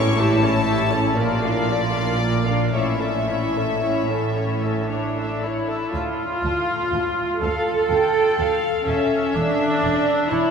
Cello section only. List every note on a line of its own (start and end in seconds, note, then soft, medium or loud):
0.00 1.18 A2 medium
1.18 2.75 A#2 medium
2.74 5.73 A2 medium
5.93 6.01 D2 medium
6.43 6.51 D2 medium
6.92 7.00 D2 medium
7.42 7.50 D2 medium
7.90 7.98 D2 medium
8.38 8.46 D2 medium
8.86 8.94 E2 medium
9.34 9.42 E2 medium
9.82 9.90 E2 medium
10.31 10.39 E2 medium